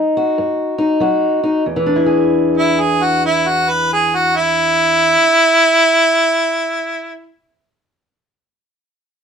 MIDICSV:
0, 0, Header, 1, 3, 480
1, 0, Start_track
1, 0, Tempo, 609137
1, 784, Tempo, 657895
1, 1264, Time_signature, 4, 2, 24, 8
1, 1264, Tempo, 680272
1, 6610, End_track
2, 0, Start_track
2, 0, Title_t, "Harmonica"
2, 0, Program_c, 0, 22
2, 1915, Note_on_c, 0, 64, 85
2, 2079, Note_on_c, 0, 68, 90
2, 2090, Note_off_c, 0, 64, 0
2, 2238, Note_on_c, 0, 66, 93
2, 2248, Note_off_c, 0, 68, 0
2, 2387, Note_off_c, 0, 66, 0
2, 2395, Note_on_c, 0, 64, 91
2, 2551, Note_on_c, 0, 66, 87
2, 2562, Note_off_c, 0, 64, 0
2, 2710, Note_on_c, 0, 71, 87
2, 2721, Note_off_c, 0, 66, 0
2, 2863, Note_off_c, 0, 71, 0
2, 2871, Note_on_c, 0, 68, 93
2, 3026, Note_on_c, 0, 66, 93
2, 3037, Note_off_c, 0, 68, 0
2, 3173, Note_on_c, 0, 64, 125
2, 3183, Note_off_c, 0, 66, 0
2, 5265, Note_off_c, 0, 64, 0
2, 6610, End_track
3, 0, Start_track
3, 0, Title_t, "Steel-string acoustic guitar"
3, 0, Program_c, 1, 25
3, 0, Note_on_c, 1, 54, 56
3, 0, Note_on_c, 1, 63, 56
3, 133, Note_on_c, 1, 66, 63
3, 264, Note_off_c, 1, 54, 0
3, 299, Note_on_c, 1, 42, 69
3, 608, Note_off_c, 1, 63, 0
3, 617, Note_on_c, 1, 63, 64
3, 751, Note_off_c, 1, 42, 0
3, 785, Note_off_c, 1, 66, 0
3, 789, Note_on_c, 1, 54, 57
3, 797, Note_on_c, 1, 66, 63
3, 1097, Note_off_c, 1, 63, 0
3, 1105, Note_on_c, 1, 63, 59
3, 1233, Note_off_c, 1, 54, 0
3, 1250, Note_off_c, 1, 63, 0
3, 1269, Note_on_c, 1, 40, 58
3, 1271, Note_off_c, 1, 66, 0
3, 1342, Note_on_c, 1, 52, 55
3, 1413, Note_on_c, 1, 62, 52
3, 1480, Note_on_c, 1, 64, 48
3, 1554, Note_on_c, 1, 68, 48
3, 3739, Note_off_c, 1, 40, 0
3, 3811, Note_off_c, 1, 52, 0
3, 3883, Note_off_c, 1, 62, 0
3, 3950, Note_off_c, 1, 64, 0
3, 4023, Note_off_c, 1, 68, 0
3, 6610, End_track
0, 0, End_of_file